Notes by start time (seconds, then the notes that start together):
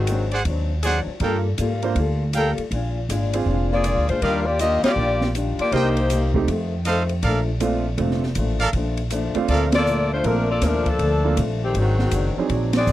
Already playing: G#1 D#3 G#3 C4 F#4
0.07 G#2 F#3 C4, hi-hat pedal, ride
0.11 D4
0.31 G#4 C5 D5 F#5, ride
0.45 D#2 G#2 F#3 C4, kick, ride
0.49 D4
0.83 G#2 F#3 C4 D4 G#4 C5 D5 F#5, hi-hat pedal, ride
1.06 muted upright bass stroke
1.20 G2 G3 A#3 D4 F4 A4 A#4 F5 G5, kick, ride
1.24 A4
1.58 G#2 G3 A#3 F4 A4, hi-hat pedal, ride
1.82 A#3 D4 F4 C5, ride
1.95 D2 G3 A#3 F4, kick, ride
2.00 A4
2.33 G3 A#3 F4 A4 A#4 F5 G5, hi-hat pedal, ride
2.37 A4
2.58 muted upright bass stroke, ride
2.71 A#1 A#2 G#3 D4, kick, ride
2.76 F4
3.09 G#1 A#2 G#3 D4 F4, hi-hat pedal, ride
3.33 C4 D4 F4 G#4, ride
3.46 F1 A#2 G#3 D4, kick
3.51 F4
3.72 A#3 F4 G#4 D5
3.84 A#2 G#3 D4 F4, hi-hat pedal, ride
3.97 D2
4.09 A#2 G#3 D4 F4 C5, ride
4.22 D#2 D#3 G3 D4 F4 G4 A#4 D5 D#5 F5, kick, ride
4.45 A#3 F4 G4 D5
4.59 D#3 G3 A#3 D4 F4 G4 D#5, hi-hat pedal, ride
4.83 A#3 F4 G4 D5 D#5 F5, muted upright bass stroke, snare, ride
4.96 A#1 D#3 G3 D4
5.00 F4
5.21 snare
5.35 D#3 G3 D4 F4, hi-hat pedal, ride
5.58 A#3 F4 G4 D5, muted upright bass stroke, ride
5.72 C2 C3 G3 A#3 D4 D#4 G4 A#4 C5 D#5 G5, kick, ride
5.76 D#4
5.97 ride
6.10 C3 G3 A#3 D#4, hi-hat pedal, ride
6.34 A3 C4 D#4 G4, kick
6.47 F2 D#3 A3 C4, kick, ride
6.85 F2 D#3 A3 C4 A4 C5 D#5 F5, hi-hat pedal, ride
7.09 ride
7.23 A#1 A#2 F3 A3 A4 A#4 D5 F5, kick, ride
7.27 D4
7.60 A#2 F3 A3 C4 D4 F4, hi-hat pedal, ride
7.97 F1 A#2 F3 A3 C4 D4 F4, kick, ride
8.02 A3 D4
8.11 snare
8.23 snare
8.35 A1 A#2 F3 A3, hi-hat pedal, ride
8.39 D4
8.60 A4 A#4 D5 F5, ride
8.73 A#1 A#2 F3 A3, kick, ride
8.78 D4
8.97 ride
9.10 A#2 F3 A3 D4, hi-hat pedal, ride
9.35 A3 C4 D4 F4, muted upright bass stroke, ride
9.48 D2 A#2 F3 A3 D4 A4 A#4 D5 F5, kick, ride
9.72 A#3 F4 A4 D5, snare, ride
9.86 A#2 F3 A3 D4, hi-hat pedal
10.13 A3 D4 F4 C5
10.24 A#1 A#2 F3 A3 A#3 C4 D4 F4 A4 A#4, kick, ride
10.28 D4
10.50 A#3 F4 A4 D5
10.61 D#2 A#2 F3 A3 D4 A#4, kick, snare, hi-hat pedal, ride
10.86 F3 A#3 D4 A4, kick, ride
10.99 D2 A#2 F3 A3, kick, ride
11.03 D4
11.24 A#3 C4 D4 F4 A4
11.37 A#1 A#2 F3 A3 D4, kick, hi-hat pedal, ride
11.64 D#3 A3 C4 G4
11.74 G#1 G#2 F#3 G#3 C4 D4 F#4, kick, ride
11.78 D#3
11.99 snare
12.11 F#1 G#2 F#3 C4 D4, kick, hi-hat pedal, ride
12.36 F#3 C4 D4 D#4 G#4, muted upright bass stroke
12.49 A#1 G#2 F#3 C4 D4, kick, ride
12.73 C4 F#4 G#4 D5, snare, ride
12.87 G#1 G#2 F#3 C4, hi-hat pedal